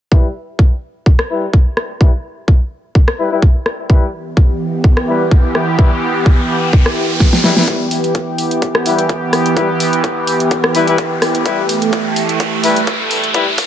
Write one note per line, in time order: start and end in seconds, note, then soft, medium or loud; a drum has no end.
0.12 0.27 G3 medium
0.12 0.27 E4 medium
0.12 0.27 B4 medium
0.12 kick loud
0.59 kick loud
1.06 kick loud
1.19 cross-stick medium
1.30 1.45 G3 medium
1.30 1.45 E4 medium
1.30 1.45 B4 medium
1.53 kick loud
1.77 cross-stick medium
2.00 2.10 G3 medium
2.00 2.10 E4 medium
2.00 2.10 B4 medium
2.00 kick loud
2.48 kick loud
2.95 kick loud
3.08 cross-stick medium
3.19 3.30 G3 medium
3.19 3.30 E4 medium
3.19 3.30 B4 medium
3.31 3.40 G3 medium
3.31 3.40 E4 medium
3.31 3.40 B4 loud
3.42 kick loud
3.66 cross-stick medium
3.89 7.64 E3 medium
3.89 4.05 G3 medium
3.89 7.64 B3 medium
3.89 4.05 E4 medium
3.89 7.64 G4 medium
3.89 4.05 B4 medium
3.89 kick loud
3.89 riser medium
4.37 kick loud
4.84 kick loud
4.97 cross-stick medium
5.08 5.23 G3 medium
5.08 5.23 E4 medium
5.08 5.23 B4 medium
5.31 kick loud
5.55 cross-stick medium
5.79 5.88 G3 medium
5.79 5.88 E4 medium
5.79 5.89 B4 medium
5.79 kick loud
6.26 kick loud
6.73 kick loud
6.86 cross-stick medium
7.20 kick loud
7.20 snare medium
7.33 snare medium
7.44 7.54 G3 medium
7.44 7.54 E4 medium
7.44 7.54 B4 medium
7.44 snare medium
7.57 7.65 G3 medium
7.57 7.65 E4 medium
7.57 7.65 B4 medium
7.57 snare medium
7.68 13.66 E3 medium
7.68 7.83 G3 medium
7.68 11.42 B3 medium
7.68 7.83 E4 medium
7.68 13.66 G4 medium
7.68 7.83 B4 medium
7.68 kick loud
7.68 closed hi-hat medium
7.68 riser medium
7.91 open hi-hat loud
8.04 closed hi-hat medium
8.15 kick loud
8.15 closed hi-hat medium
8.38 open hi-hat medium
8.51 closed hi-hat soft
8.62 kick loud
8.62 closed hi-hat medium
8.75 cross-stick medium
8.86 9.01 G3 medium
8.86 9.01 E4 medium
8.86 9.01 B4 medium
8.86 open hi-hat loud
8.99 closed hi-hat medium
9.09 kick loud
9.09 closed hi-hat medium
9.33 cross-stick medium
9.33 open hi-hat medium
9.46 closed hi-hat medium
9.57 9.66 G3 medium
9.57 9.66 E4 medium
9.57 9.66 B4 loud
9.57 kick loud
9.57 closed hi-hat medium
9.80 open hi-hat loud
9.93 closed hi-hat medium
10.04 kick loud
10.04 closed hi-hat medium
10.27 open hi-hat medium
10.40 closed hi-hat soft
10.51 kick loud
10.51 closed hi-hat medium
10.64 cross-stick medium
10.75 10.86 G3 medium
10.75 10.86 E4 medium
10.75 10.86 B4 loud
10.75 open hi-hat loud
10.87 10.96 G3 medium
10.87 10.96 E4 medium
10.87 10.96 B4 loud
10.87 closed hi-hat medium
10.98 kick loud
10.98 closed hi-hat medium
11.22 cross-stick medium
11.22 open hi-hat medium
11.35 closed hi-hat medium
11.46 11.61 G3 medium
11.46 13.66 A3 medium
11.46 11.61 E4 medium
11.46 11.61 B4 medium
11.46 kick loud
11.46 closed hi-hat medium
11.69 open hi-hat loud
11.82 closed hi-hat soft
11.93 kick loud
11.93 closed hi-hat medium
12.16 open hi-hat loud
12.29 closed hi-hat soft
12.40 kick loud
12.40 closed hi-hat medium
12.64 12.79 G3 medium
12.64 12.79 E4 medium
12.64 12.79 B4 medium
12.64 open hi-hat loud
12.76 closed hi-hat medium
12.87 kick loud
12.87 closed hi-hat medium
13.11 open hi-hat medium
13.24 closed hi-hat soft
13.34 13.44 G3 medium
13.34 13.44 E4 medium
13.34 13.44 B4 loud
13.34 kick loud
13.34 closed hi-hat medium
13.58 kick loud
13.58 open hi-hat loud